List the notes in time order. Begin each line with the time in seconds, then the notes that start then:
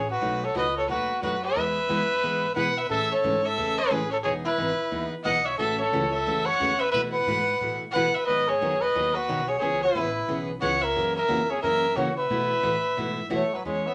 Already playing: A1
0.11 F#4 B4
0.21 B1 B2 F#3 A3 D#4 F#4
0.44 A4 C#5
0.54 C#2 B2 F#3 A3 D#4 F#4 B4 D#5
0.77 A4 C#5
0.89 D#2 B2 F#3 A3 D#4 F#4 B4
1.22 F#2 B2 F#3 A3 D#4 F#4 B4
1.44 B4 E5
1.56 E2 E3 G#3 B3 E4 G#4
1.89 F#2 E3 G#3 B3 E4 G#4
2.23 G#2 E3 G#3 B3 E4 G#4
2.55 B2 E3 G#3 B3 E4 G#4 B4 F#5
2.77 B4 E5
2.90 A2 C#3 E3 A3 C#4 G#4 A4 E5
3.12 A4 C#5
3.23 G#2 C#3 E3 A3 C#4 G#4
3.45 A4 E5
3.57 E2 C#3 E3 A3 C#4 G#4
3.78 G#4 B4
3.90 A1 C#3 E3 A3 C#4 G#4
4.11 A4 C#5
4.23 E1 E3 B3 D#4 G#4 C#5
4.45 E4 B4
4.58 G#1 E3 B3 D#4 G#4
4.91 D#2 E3 B3 D#4 G#4
5.24 B1 E3 B3 D#4 G#4 D#5 F#5
5.45 C#5 E5
5.58 A1 C#3 E3 A3 C#4 F#4 A4 E5
5.78 A4 C#5
5.92 C#2 C#3 E3 A3 C#4 F#4
6.11 A4 E5
6.26 F#2 C#3 E3 A3 C#4 F#4
6.45 C#5 F#5
6.60 E2 C#3 E3 A3 C#4 F#4
6.79 B4 E5
6.91 B2 E3 A3 E4 F#4 B4 E5
7.12 B4 F#5
7.26 G#2 B2 E3 A3 E4 F#4
7.60 A2 B2 E3 A3 E4 F#4
7.91 B2 B4 F#5
7.95 E3 A3 E4 F#4
8.14 B4 E5, muted upright bass stroke
8.26 G#2 D#3 F#3 B3 D#4 B4 D#5
8.30 G#4
8.48 G#4 C#5
8.61 F#2 D#3 F#3 B3 D#4 G#4
8.81 B4 D#5
8.94 D#2 D#3 F#3 B3 D#4 G#4
9.15 F#4 B4
9.28 B1 D#3 F#3 B3 D#4 G#4
9.48 G#4 C#5
9.59 C#2 C#3 E3 B3 C#4 G#4 C5 C#5
9.82 E4 B4
9.95 A1 C#3 E3 B3 C#4 G#4
10.28 B1 C#3 E3 B3 C#4 G#4
10.61 C#2 C#3 E3 B3 C#4 G#4 C#5 F#5
10.81 A#4 E5
10.95 F#2 C#3 E3 A#3 C#4 F#4
11.15 A#4 E5
11.28 F2 C#3 E3 A#3 C#4 F#4
11.49 G#4 C#5
11.61 F#2 C#3 E3 A#3 C#4 F#4 A#4 E5
11.96 C#3 E3 A#3 C#4 F#4 C#5
12.17 B4 E5
12.30 B2 E3 A3 E4 F#4
12.63 A2 B2 E3 A3 E4 F#4
12.97 G#2 B2 E3 A3 E4 F#4
13.30 F#2 B2 E3 A3 E4 F#4 C#5
13.54 F#3 B4
13.64 E2 E3 G#3 B3 C#4 G#4 C#5
13.87 B3 E5